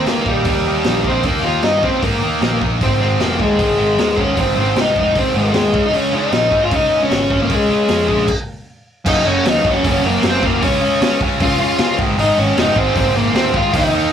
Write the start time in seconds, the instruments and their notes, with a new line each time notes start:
0.06 picked electric bass C#2, distorted electric guitar D#3 A#3 D#4, lead electric guitar A#3 A#4, snare, open hi-hat
0.26 picked electric bass A#2, distorted electric guitar D#3 A#3 D#4, lead electric guitar G3 G4, kick
0.45 picked electric bass D#2, distorted electric guitar D#3 A#3 D#4, kick, open hi-hat
0.67 distorted electric guitar D#3 A#3 D#4
0.84 picked electric bass A#1, distorted electric guitar D#3 A#3, snare, open hi-hat
0.88 distorted electric guitar D#4
1.04 distorted electric guitar D#3 A#3, lead electric guitar C4 C5, kick
1.08 distorted electric guitar D#4
1.23 picked electric bass D#2, distorted electric guitar D#3 A#3 D#4, lead electric guitar A#3 A#4, kick, open hi-hat
1.42 picked electric bass D#2, distorted electric guitar D#3 A#3 D#4, lead electric guitar F4 F5
1.63 picked electric bass G2, distorted electric guitar D#3 A#3 D#4, lead electric guitar D#4 D#5, snare, open hi-hat
1.83 picked electric bass C#2, distorted electric guitar D#3 A#3 D#4, lead electric guitar C4 C5, kick
2.03 picked electric bass G#2, distorted electric guitar D#3 A#3 D#4, lead electric guitar A#3 A#4, kick, open hi-hat
2.22 picked electric bass D#2, distorted electric guitar D#3 A#3 D#4
2.41 picked electric bass A#1, distorted electric guitar D#3 A#3 D#4, snare, open hi-hat
2.61 picked electric bass A#1, distorted electric guitar D#3 A#3 D#4, kick
2.81 picked electric bass G#1, distorted electric guitar G#2 D#3 G#3, lead electric guitar C4 C5, kick, open hi-hat
2.99 picked electric bass G#1, distorted electric guitar G#2 D#3, lead electric guitar C4 C5
3.03 distorted electric guitar G#3
3.19 picked electric bass F1, distorted electric guitar G#2 D#3 G#3, lead electric guitar A#3 A#4, snare, open hi-hat
3.39 picked electric bass D#2, distorted electric guitar G#2 D#3 G#3, lead electric guitar G#3 G#4, kick
3.58 picked electric bass G#1, distorted electric guitar G#2 D#3 G#3, kick, open hi-hat
3.77 distorted electric guitar G#2 D#3 G#3
3.97 picked electric bass D#2, distorted electric guitar G#2 D#3 G#3, snare, open hi-hat
4.16 distorted electric guitar G#2 D#3 G#3, lead electric guitar C#4, kick
4.21 lead electric guitar C#5
4.35 picked electric bass G#1, distorted electric guitar G#2 D#3 G#3, kick, open hi-hat
4.39 lead electric guitar C4 C5
4.55 picked electric bass G#1, distorted electric guitar G#2 D#3 G#3
4.59 lead electric guitar C4 C5
4.75 picked electric bass C2, distorted electric guitar G#2 D#3 G#3, snare, open hi-hat
4.80 lead electric guitar D#4 D#5
4.94 picked electric bass F1, distorted electric guitar G#2 D#3 G#3, lead electric guitar D#4, kick
5.00 lead electric guitar D#5
5.13 picked electric bass C#2, distorted electric guitar G#2 D#3 G#3, kick, open hi-hat
5.18 lead electric guitar C4 C5
5.32 picked electric bass G#1, distorted electric guitar G#2 D#3 G#3
5.36 lead electric guitar G#3 G#4
5.53 picked electric bass D#2, distorted electric guitar G#2 D#3 G#3, snare, open hi-hat
5.71 picked electric bass C#2, distorted electric guitar C#3 G#3 C#4, kick
5.85 lead electric guitar D#4 D#5
5.92 picked electric bass C#2, distorted electric guitar C#3 G#3 C#4, lead electric guitar C#4, open hi-hat
5.97 lead electric guitar C#5
6.12 picked electric bass C#2, distorted electric guitar C#3 G#3 C#4, lead electric guitar D#4
6.17 lead electric guitar D#5
6.30 picked electric bass A#1, distorted electric guitar C#3 G#3 C#4, snare, open hi-hat
6.50 picked electric bass G#2, distorted electric guitar C#3 G#3 C#4, kick
6.64 lead electric guitar F4 F5
6.70 picked electric bass C#2, distorted electric guitar C#3 G#3 C#4, lead electric guitar D#4, kick, open hi-hat
6.75 lead electric guitar D#5
6.91 distorted electric guitar C#3 G#3 C#4
7.03 lead electric guitar C#4 C#5
7.10 picked electric bass G#1, distorted electric guitar C#3 G#3 C#4, snare, open hi-hat
7.30 distorted electric guitar C#3 G#3 C#4, kick
7.42 lead electric guitar A#3 A#4
7.50 picked electric bass C#2, distorted electric guitar C#3 G#3 C#4, lead electric guitar G#3, kick, open hi-hat
7.54 lead electric guitar G#4
7.69 picked electric bass C#2, distorted electric guitar C#3 G#3 C#4
7.88 picked electric bass F2, distorted electric guitar C#3 G#3 C#4, snare, open hi-hat
8.08 picked electric bass A#1, distorted electric guitar C#3 G#3 C#4, kick
8.28 kick, crash
9.05 picked electric bass F#1, distorted electric guitar F#2 C#3 F#3, lead electric guitar D#4 D#5, kick, crash
9.25 picked electric bass F#1, distorted electric guitar F#2 C#3 F#3, lead electric guitar C#4 C#5
9.44 picked electric bass D#2, distorted electric guitar F#2 C#3 F#3, snare, open hi-hat
9.48 lead electric guitar D#4 D#5
9.64 picked electric bass F#1, distorted electric guitar F#2 C#3 F#3, kick
9.70 lead electric guitar C#4 C#5
9.83 picked electric bass F#1, distorted electric guitar F#2 C#3 F#3, lead electric guitar C#4, kick, open hi-hat
9.88 lead electric guitar C#5
10.02 picked electric bass F#1, distorted electric guitar F#2 C#3 F#3, lead electric guitar A#3
10.07 lead electric guitar A#4
10.21 picked electric bass F#1, distorted electric guitar F#2 C#3 F#3, snare, open hi-hat
10.28 lead electric guitar C4 C5
10.41 distorted electric guitar F#2 C#3 F#3, kick
10.45 lead electric guitar A#3 A#4
10.60 picked electric bass C#2, distorted electric guitar C#3 G#3 C#4, lead electric guitar C#4, kick, open hi-hat
10.65 lead electric guitar C#5
10.81 picked electric bass C#2, distorted electric guitar C#3 G#3 C#4
11.01 picked electric bass C#2, distorted electric guitar C#3 G#3 C#4, snare, open hi-hat
11.21 picked electric bass C#2, distorted electric guitar C#3 G#3 C#4, kick
11.40 picked electric bass C#2, distorted electric guitar C#3 G#3 C#4, lead electric guitar F4 F5, kick, open hi-hat
11.59 picked electric bass C#2, distorted electric guitar C#3 G#3 C#4, lead electric guitar F4 F5
11.78 picked electric bass C#2, distorted electric guitar C#3 G#3 C#4, snare, open hi-hat
11.97 picked electric bass G#1, distorted electric guitar G#2 D#3 G#3, kick
12.17 picked electric bass G#1, distorted electric guitar G#2 D#3 G#3, lead electric guitar D#4 D#5, open hi-hat
12.37 picked electric bass G#1, distorted electric guitar G#2 D#3 G#3, lead electric guitar C#4 C#5
12.56 picked electric bass F1, distorted electric guitar G#2 D#3 G#3, lead electric guitar D#4 D#5, snare, open hi-hat
12.76 picked electric bass G#1, distorted electric guitar G#2 D#3 G#3, lead electric guitar C4 C5, kick
12.95 picked electric bass G#1, distorted electric guitar G#2 D#3 G#3, lead electric guitar C4 C5, kick, open hi-hat
13.16 picked electric bass G#1, distorted electric guitar G#2 D#3 G#3, lead electric guitar A#3 A#4
13.34 picked electric bass D2, distorted electric guitar G#2 D#3 G#3, lead electric guitar C4 C5, snare, open hi-hat
13.52 distorted electric guitar G#2 D#3 G#3, lead electric guitar F4, kick
13.56 lead electric guitar F5
13.73 picked electric bass D#2, distorted electric guitar D#3 A#3 D#4, lead electric guitar D#4 D#5, kick, open hi-hat
13.92 picked electric bass D#2, distorted electric guitar D#3 A#3 D#4